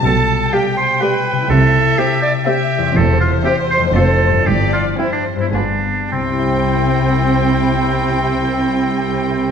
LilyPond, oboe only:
\new Staff \with { instrumentName = "Oboe" } { \time 3/4 \key c \major \tempo 4 = 116 a'4 g'8 c''8 b'4 | a'4 g'8 d''8 g'4 | a'8 f'8 g'8 c''8 a'4 | g'8 f'8 e'16 d'8 e'16 d'4 |
c'2.~ | c'2. | }